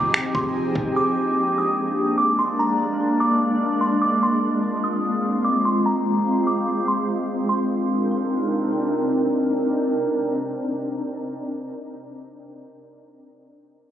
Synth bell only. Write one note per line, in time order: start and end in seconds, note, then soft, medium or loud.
0.00 0.32 D6 medium
0.35 0.54 C6 medium
0.96 1.54 D6 loud
1.58 2.15 D#6 medium
2.18 2.37 D6 medium
2.39 2.58 C6 medium
2.59 3.17 A#5 medium
3.20 3.78 D6 medium
3.81 4.01 C6 medium
4.02 4.21 D6 medium
4.23 4.80 C6 loud
4.84 5.41 D#6 medium
5.45 5.64 D6 medium
5.65 5.85 C6 medium
5.86 6.43 A#5 medium
6.47 6.85 D6 medium
6.88 7.07 C6 medium
7.49 8.68 C6 medium